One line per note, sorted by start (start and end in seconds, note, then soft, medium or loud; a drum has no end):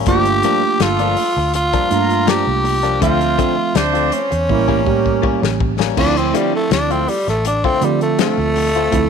0.06 0.41 G1 medium
0.06 0.27 G2 medium
0.06 0.27 F3 medium
0.06 0.45 G3 medium
0.06 1.22 A3 medium
0.06 1.23 A#3 medium
0.06 0.27 A#3 medium
0.06 1.23 D4 medium
0.06 0.27 D4 medium
0.06 1.23 F4 medium
0.06 0.45 F4 medium
0.06 0.84 G4 loud
0.06 0.45 G4 medium
0.06 kick loud
0.06 closed hi-hat medium
0.25 muted clean electric guitar stroke soft
0.25 closed hi-hat soft
0.43 0.63 G2 medium
0.43 0.64 F3 medium
0.43 0.63 A#3 medium
0.43 0.62 D4 medium
0.43 closed hi-hat medium
0.64 muted clean electric guitar stroke soft
0.79 1.14 G1 medium
0.79 1.37 A3 medium
0.79 1.36 F4 medium
0.79 1.55 F4 medium
0.79 1.37 A4 medium
0.79 snare loud
0.79 closed hi-hat medium
0.99 1.17 F3 soft
0.99 1.18 A#3 soft
0.99 1.18 D4 medium
0.99 closed hi-hat soft
1.17 muted clean electric guitar stroke soft
1.17 open hi-hat medium
1.37 1.71 D2 medium
1.37 muted clean electric guitar stroke soft
1.54 2.30 F4 medium
1.54 muted clean electric guitar stroke soft
1.54 closed hi-hat medium
1.73 1.90 G2 medium
1.73 1.90 F3 medium
1.73 1.90 A#3 medium
1.73 1.90 D4 medium
1.73 kick medium
1.73 closed hi-hat soft
1.90 2.44 G2 medium
1.90 2.78 A3 medium
1.90 2.78 A#3 medium
1.90 2.78 D4 medium
1.90 2.79 F4 medium
1.90 2.49 F4 medium
1.90 2.49 A#4 medium
1.90 2.49 A#5 medium
1.90 closed hi-hat medium
2.10 closed hi-hat soft
2.26 2.47 G2 medium
2.26 2.46 F3 medium
2.26 2.46 A#3 medium
2.26 2.45 D4 medium
2.26 3.02 G4 medium
2.26 snare loud
2.26 closed hi-hat medium
2.46 2.98 C2 medium
2.46 muted clean electric guitar stroke soft
2.64 muted clean electric guitar stroke soft
2.64 open hi-hat medium
2.83 3.01 F3 soft
2.83 3.02 A#3 soft
2.83 3.02 D4 medium
2.83 closed hi-hat soft
3.01 3.36 D2 medium
3.01 3.21 D3 medium
3.01 4.17 F3 medium
3.01 3.21 A3 medium
3.01 4.17 A3 medium
3.01 3.20 C4 medium
3.01 4.18 C4 medium
3.01 3.40 C4 medium
3.01 3.39 D4 medium
3.01 3.20 F4 medium
3.01 3.78 F4 medium
3.01 3.40 F4 medium
3.01 3.40 C5 medium
3.01 4.18 E5 medium
3.01 kick loud
3.01 closed hi-hat medium
3.21 muted clean electric guitar stroke soft
3.21 closed hi-hat soft
3.38 3.58 D3 medium
3.38 3.57 A3 medium
3.38 3.56 C4 medium
3.38 3.56 F4 medium
3.38 kick medium
3.38 closed hi-hat medium
3.57 muted clean electric guitar stroke soft
3.75 4.09 D2 medium
3.75 4.32 C4 medium
3.75 4.32 D4 medium
3.75 4.15 D4 medium
3.75 4.32 C5 medium
3.75 snare loud
3.75 closed hi-hat medium
3.94 4.11 A3 soft
3.94 4.11 C4 soft
3.94 4.11 F4 soft
3.94 closed hi-hat soft
4.11 5.61 C#4 medium
4.11 muted clean electric guitar stroke soft
4.11 closed hi-hat medium
4.31 4.48 E2 medium
4.31 muted clean electric guitar stroke soft
4.31 closed hi-hat soft
4.49 4.84 A1 medium
4.49 4.80 G3 medium
4.49 4.80 A#3 medium
4.49 4.80 C#4 medium
4.49 4.81 E4 medium
4.49 4.80 G4 medium
4.49 4.80 A#4 medium
4.49 muted clean electric guitar stroke soft
4.49 kick medium
4.68 4.85 A2 medium
4.68 4.85 G3 medium
4.68 4.85 A#3 medium
4.68 4.85 C#4 medium
4.68 kick medium
4.85 5.39 A2 medium
4.85 5.73 G3 medium
4.85 5.73 A#3 medium
4.85 5.44 A#3 medium
4.85 5.73 C#4 medium
4.85 5.43 C#4 medium
4.85 5.43 G4 medium
4.85 5.74 G4 medium
4.85 5.44 A#4 medium
4.85 muted clean electric guitar stroke soft
4.85 kick medium
5.06 kick medium
5.22 5.42 A2 medium
5.22 5.42 G3 medium
5.22 5.42 A#3 medium
5.22 5.41 C#4 medium
5.22 kick medium
5.42 5.93 A1 medium
5.42 muted clean electric guitar stroke soft
5.42 snare medium
5.60 muted clean electric guitar stroke soft
5.60 kick medium
5.79 5.97 G3 medium
5.79 5.97 A#3 soft
5.79 5.97 C#4 medium
5.79 snare medium
5.96 6.31 D2 medium
5.96 6.17 D3 medium
5.96 7.12 F3 medium
5.96 7.12 A3 medium
5.96 6.17 A3 medium
5.96 7.13 C4 medium
5.96 6.16 C4 medium
5.96 6.19 D4 loud
5.96 7.13 E4 medium
5.96 6.15 F4 medium
5.96 kick loud
5.96 crash medium
6.17 6.34 C4 medium
6.17 muted clean electric guitar stroke soft
6.17 closed hi-hat soft
6.34 6.54 D3 medium
6.34 6.53 G3 medium
6.34 6.54 A3 medium
6.34 6.54 C4 medium
6.34 6.53 F4 medium
6.34 closed hi-hat medium
6.54 6.71 A3 medium
6.54 muted clean electric guitar stroke soft
6.71 7.05 D2 medium
6.71 6.93 D4 medium
6.71 snare loud
6.71 closed hi-hat medium
6.90 7.08 A3 soft
6.90 7.08 C4 soft
6.90 7.10 C4 medium
6.90 7.08 F4 soft
6.90 closed hi-hat soft
7.08 7.27 G3 medium
7.08 muted clean electric guitar stroke soft
7.08 open hi-hat medium
7.28 7.62 A1 medium
7.28 7.45 A3 medium
7.28 muted clean electric guitar stroke soft
7.28 snare soft
7.28 closed hi-hat soft
7.45 7.66 D4 medium
7.45 muted clean electric guitar stroke soft
7.45 closed hi-hat medium
7.64 7.81 D3 medium
7.64 7.82 A3 medium
7.64 7.86 C4 medium
7.64 7.82 C4 medium
7.64 7.82 F4 medium
7.64 kick medium
7.81 8.34 D3 medium
7.81 8.68 F3 medium
7.81 8.02 G3 medium
7.81 8.69 A3 medium
7.81 8.69 C4 medium
7.81 8.69 F4 medium
7.81 muted clean electric guitar stroke soft
7.81 closed hi-hat medium
8.01 8.18 A3 medium
8.01 closed hi-hat soft
8.19 8.39 D3 medium
8.19 9.10 A3 loud
8.19 8.39 A3 medium
8.19 8.38 C4 medium
8.19 8.38 F4 medium
8.19 snare loud
8.19 closed hi-hat medium
8.38 8.89 D2 medium
8.38 muted clean electric guitar stroke soft
8.56 muted clean electric guitar stroke soft
8.56 open hi-hat medium
8.75 8.98 A3 soft
8.75 8.98 C4 soft
8.75 8.97 F4 medium
8.75 closed hi-hat soft
8.92 9.10 D2 medium
8.92 9.10 F3 medium
8.92 9.10 A3 medium
8.92 9.10 C4 medium
8.92 9.10 E4 medium
8.92 kick loud
8.92 closed hi-hat medium